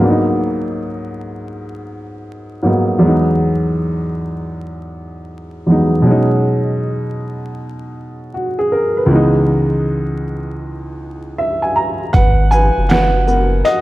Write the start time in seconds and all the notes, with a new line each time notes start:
Already playing: G#2 F#3
0.00 A#3 B3 D4
0.10 D#4
2.62 G#2 F#3 A#3 B3
2.67 D#4
2.99 E2 F#3
3.03 G#3 B3
3.07 D#4
5.66 E2 F#3 G#3 B3
5.71 D#4
6.02 B2 F#3
6.07 G#3 C#4
6.11 D#4
8.34 F#4
8.59 G#4
8.72 A#4
8.97 B4
9.06 C#2 E3
9.11 G#3 B3
9.16 D#4
11.38 E5
11.62 G#5
11.76 A#5
12.13 G#1 B4 F#5, kick, closed hi-hat
12.51 B4 G#5, shaker
12.78 F#1
12.89 B4 F#5, snare, closed hi-hat
13.27 B3 F#4 A#4, shaker
13.65 F#4 D#5, closed hi-hat